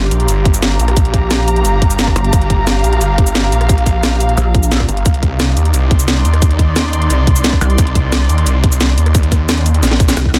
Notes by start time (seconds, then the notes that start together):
Already playing: G4 D5 F5 C6
0.09 A#1 A#5, closed hi-hat, shaker
0.20 closed hi-hat
0.28 G1, closed hi-hat, shaker
0.45 kick, closed hi-hat
0.54 shaker
0.62 snare, closed hi-hat, shaker
0.79 A#1, closed hi-hat, shaker
0.88 cross-stick, closed hi-hat
0.97 kick, closed hi-hat, shaker
1.05 closed hi-hat
1.14 kick, closed hi-hat
1.31 snare, closed hi-hat, shaker
1.48 closed hi-hat, shaker
1.56 closed hi-hat
1.65 G1, closed hi-hat, shaker
1.82 kick, closed hi-hat
1.90 shaker
1.99 snare, closed hi-hat, shaker
2.07 kick, cross-stick
2.16 G1, closed hi-hat, shaker
2.24 closed hi-hat
2.33 G1, kick, closed hi-hat, shaker
2.42 closed hi-hat
2.50 kick, closed hi-hat
2.67 snare, closed hi-hat, shaker
2.84 A#1, closed hi-hat, shaker
2.93 closed hi-hat
3.01 G1, closed hi-hat, shaker
3.18 kick, closed hi-hat
3.27 shaker
3.35 snare, closed hi-hat, shaker
3.52 A#1, closed hi-hat, shaker
3.61 cross-stick, closed hi-hat
3.69 kick, closed hi-hat, shaker
3.78 closed hi-hat
3.86 kick, closed hi-hat, shaker
4.03 snare, closed hi-hat, shaker
4.20 closed hi-hat, shaker
4.29 closed hi-hat
4.37 A#1, closed hi-hat, shaker
4.55 kick, closed hi-hat
4.63 shaker
4.72 snare, closed hi-hat, shaker
4.80 kick, cross-stick
4.89 G1, closed hi-hat, shaker
4.97 closed hi-hat
5.06 C2 D#4, kick, closed hi-hat, shaker
5.14 closed hi-hat
5.23 kick, closed hi-hat
5.40 snare, closed hi-hat, shaker
5.51 D5
5.57 D#2, closed hi-hat, shaker
5.65 closed hi-hat
5.74 C2, closed hi-hat, shaker
5.79 C6
5.91 kick, closed hi-hat
5.99 shaker
6.08 snare, closed hi-hat, shaker
6.25 D#2, closed hi-hat, shaker
6.34 cross-stick, closed hi-hat
6.42 kick, closed hi-hat, shaker
6.51 closed hi-hat
6.59 kick, closed hi-hat
6.76 snare, closed hi-hat, shaker
6.93 closed hi-hat, shaker
7.02 closed hi-hat
7.10 C2, closed hi-hat, shaker
7.27 kick, closed hi-hat
7.36 shaker
7.44 snare, closed hi-hat, shaker
7.53 kick, cross-stick
7.61 C2, closed hi-hat, shaker
7.70 closed hi-hat
7.78 C2, kick, closed hi-hat, shaker
7.87 closed hi-hat
7.95 kick, closed hi-hat
8.12 snare, closed hi-hat, shaker
8.29 D#2, closed hi-hat, shaker
8.38 closed hi-hat
8.46 C2, closed hi-hat, shaker
8.64 kick, closed hi-hat
8.72 shaker
8.81 snare, closed hi-hat, shaker
8.98 D#2, closed hi-hat, shaker
9.06 cross-stick, closed hi-hat
9.15 kick, closed hi-hat, shaker
9.23 closed hi-hat
9.32 kick, cross-stick, closed hi-hat, shaker
9.49 snare, closed hi-hat, shaker
9.57 closed hi-hat
9.66 closed hi-hat, shaker
9.74 closed hi-hat
9.83 A#1, snare, closed hi-hat, shaker
9.91 snare
10.00 kick, closed hi-hat, shaker
10.08 snare, shaker
10.17 C2, snare, closed hi-hat, shaker
10.26 kick
10.34 snare, closed hi-hat, shaker